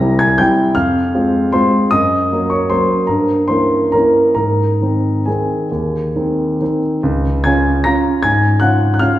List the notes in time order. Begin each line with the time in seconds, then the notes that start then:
Already playing: C2 A#5 A#6
0.00 G3 C4 E4
0.19 G#5 G#6
0.38 G3 C4 E4 G5 G6
0.75 F2 F5 F6
1.15 G#3 C4 F4
1.52 G#3 C4 F4 C5 C6
1.91 F#2 D#5 D#6
2.32 F#3 A#3 C#4
2.50 C#5 C#6
2.70 F#3 A#3 C#4 C5 C6
3.07 G2 A#4 A#5
3.48 E3 A#3 C#4 C5 C6
3.92 E3 A#3 C#4 A#4 A#5
4.35 G#2 A#4 A#5
4.81 D#3 C4 D#4
5.26 D#3 C4 D#4 G#4 G#5
5.72 D#2
6.16 D#3 C4 D#4
6.61 D#3 C4 D#4
7.03 C#2
7.44 C#3 C#4 F4 G#5 G#6
7.84 C#3 C#4 F4 A#5 A#6
8.23 G#2 G#5 G#6
8.60 C#3 C#4 F4 F#5 F#6
8.94 F#6
8.99 C#3 C#4 F4 F5 F6